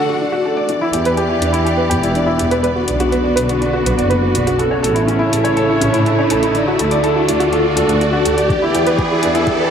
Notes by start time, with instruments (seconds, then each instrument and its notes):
Already playing: string section D3 A3 F#4 D5, felt piano D4 F#4 A4 D5, violin F#5
0.09 felt piano F#4
0.21 felt piano D4
0.32 felt piano F#4
0.45 felt piano A4
0.57 felt piano D5
0.69 string section E3, felt piano D4, closed hi-hat, riser
0.76 string section B3
0.81 felt piano E4
0.85 string section G4
0.93 double bass section E2, felt piano G4, closed hi-hat
1.05 felt piano B4, closed hi-hat
1.17 felt piano G4, closed hi-hat
1.29 felt piano E4
1.41 double bass section E2, felt piano D4, closed hi-hat
1.53 felt piano E4, closed hi-hat
1.65 felt piano G4, closed hi-hat
1.77 felt piano B4
1.89 double bass section E2, felt piano G4, closed hi-hat
2.02 double bass section E1, felt piano E4, closed hi-hat
2.14 felt piano D4, closed hi-hat
2.26 felt piano E4
2.38 double bass section E2, felt piano G4, closed hi-hat
2.51 felt piano B4, closed hi-hat
2.63 string section D3, felt piano B4, closed hi-hat
2.76 felt piano F#4
2.88 double bass section B1, felt piano D4, closed hi-hat
2.98 string section F#4, felt piano F#4, closed hi-hat
3.12 felt piano B4, closed hi-hat
3.24 felt piano D5
3.36 double bass section B1, felt piano B4, closed hi-hat
3.49 felt piano F#4, closed hi-hat
3.61 felt piano D4, closed hi-hat
3.73 felt piano F#4
3.86 double bass section B1, felt piano B4, closed hi-hat
3.97 double bass section F#1, felt piano D5, closed hi-hat
4.10 felt piano B4, closed hi-hat
4.22 felt piano F#4
4.34 double bass section B1, felt piano D4, closed hi-hat
4.47 felt piano F#4, closed hi-hat
4.58 string section C#3, felt piano A4, closed hi-hat
4.68 string section A3, felt piano C#5
4.83 double bass section A1, felt piano A4, closed hi-hat
4.94 felt piano E4, closed hi-hat
5.07 felt piano C#4, closed hi-hat
5.19 felt piano E4, string section C#5
5.28 string section E4, felt piano A4
5.32 double bass section A1, closed hi-hat
5.44 felt piano C#5, closed hi-hat
5.56 felt piano A4, closed hi-hat
5.69 felt piano E4
5.81 double bass section A1, felt piano C#4, closed hi-hat
5.93 double bass section A2, felt piano E4, closed hi-hat
6.06 felt piano A4, closed hi-hat
6.18 felt piano C#5
6.30 double bass section A1, felt piano A4, closed hi-hat
6.43 felt piano E4, closed hi-hat
6.54 string section D3, felt piano D4, closed hi-hat
6.67 felt piano F#4
6.79 double bass section D2, felt piano A4, closed hi-hat
6.91 felt piano D5, closed hi-hat
7.03 felt piano A4, closed hi-hat
7.15 felt piano F#4
7.21 string section F#4
7.28 double bass section D2, felt piano D4, string section D5, closed hi-hat
7.40 felt piano F#4, closed hi-hat
7.52 felt piano A4, closed hi-hat
7.65 felt piano D5
7.76 double bass section D2, felt piano A4, closed hi-hat
7.89 double bass section D2, felt piano F#4, closed hi-hat
8.01 felt piano D4, closed hi-hat
8.13 felt piano F#4
8.25 double bass section D2, felt piano A4, closed hi-hat
8.38 felt piano D5, closed hi-hat
8.50 string section E3, felt piano D4, kick, closed hi-hat
8.60 string section B3, felt piano E4
8.74 double bass section E2, felt piano G4, closed hi-hat
8.87 felt piano B4, closed hi-hat
8.98 felt piano G4, kick, closed hi-hat
9.11 felt piano E4
9.18 string section G4
9.23 double bass section E2, felt piano D4, closed hi-hat
9.35 felt piano E4, closed hi-hat
9.47 felt piano G4, kick, closed hi-hat
9.59 felt piano B4